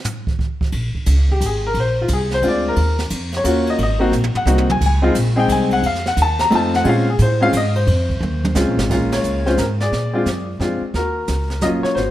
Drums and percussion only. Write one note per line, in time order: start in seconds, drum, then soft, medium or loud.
0.04 floor tom loud
0.04 hi-hat pedal medium
0.27 kick medium
0.39 kick medium
0.61 kick medium
0.72 kick soft
0.72 ride medium
0.95 kick soft
1.06 kick soft
1.06 hi-hat pedal medium
1.06 ride medium
1.29 kick soft
1.41 hi-hat pedal medium
1.41 ride medium
1.74 kick soft
1.74 ride medium
2.08 kick soft
2.08 hi-hat pedal soft
2.08 ride medium
2.31 snare soft
2.42 kick soft
2.42 ride medium
2.76 kick soft
2.76 ride medium
2.99 snare soft
3.10 kick soft
3.10 hi-hat pedal soft
3.10 ride medium
3.32 snare soft
3.32 ride soft
3.44 kick soft
3.44 hi-hat pedal medium
3.44 ride medium
3.67 ride soft
3.78 kick soft
3.78 ride medium
4.13 hi-hat pedal medium
4.13 high tom medium
4.24 high tom medium
4.35 floor tom medium
4.47 hi-hat pedal medium
4.47 high tom medium
4.58 high tom medium
4.70 mid tom medium
4.81 kick medium
4.81 crash medium
5.15 kick soft
5.15 hi-hat pedal medium
5.15 ride medium
5.49 kick soft
5.49 hi-hat pedal medium
5.49 ride medium
5.71 ride medium
5.83 kick soft
5.83 ride medium
5.95 snare soft
6.06 snare soft
6.17 kick soft
6.17 hi-hat pedal medium
6.17 ride medium
6.39 snare medium
6.39 ride soft
6.51 kick soft
6.51 ride medium
6.74 snare soft
6.84 kick soft
6.84 ride medium
7.19 kick soft
7.19 hi-hat pedal medium
7.19 ride medium
7.53 kick soft
7.53 hi-hat pedal medium
7.53 ride medium
7.75 ride medium
7.87 kick soft
7.87 ride medium
8.10 kick medium
8.23 mid tom medium
8.45 mid tom medium
8.55 snare medium
8.55 hi-hat pedal medium
8.79 snare loud
8.90 brush sweep soft
8.90 kick medium
8.90 snare soft
8.90 crash medium
9.12 snare medium
9.12 ride medium
9.24 hi-hat pedal soft
9.46 snare soft
9.58 kick soft
9.58 snare medium
9.58 hi-hat pedal medium
9.80 snare soft
9.92 brush sweep soft
9.92 kick soft
9.92 snare soft
10.26 kick soft
10.26 snare medium
10.26 hi-hat pedal medium
10.60 kick soft
10.60 snare soft
10.94 brush sweep soft
10.94 kick soft
10.94 snare soft
11.28 kick soft
11.28 snare medium
11.28 hi-hat pedal medium
11.50 snare soft
11.61 kick soft
11.61 snare medium
11.61 hi-hat pedal medium
11.84 snare soft
11.96 brush sweep soft
11.96 kick soft
11.96 snare soft